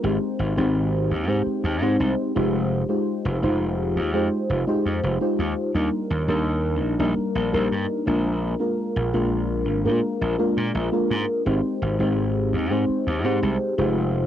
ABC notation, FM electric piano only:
X:1
M:4/4
L:1/16
Q:1/4=84
K:Fdor
V:1 name="FM electric piano"
[A,CEGc]3 [A,CEGc]4 [A,CEGc]3 [A,CEGc]3 [A,EFGc]3 | [A,EFGc]3 [A,EFGc]4 [A,EFGc]3 [A,EFGc]3 [A,EFGc]3 | [G,B,DEB]3 [G,B,DEB]4 [G,B,DEB]3 [G,B,DEB]3 [A,B,DFB]3 | [A,B,DFB]3 [A,B,DFB]4 [A,B,DFB]3 [A,B,DFB]3 [A,B,DFB]3 |
[A,CEGc]3 [A,CEGc]4 [A,CEGc]3 [A,CEGc]3 [A,EFGc]3 |]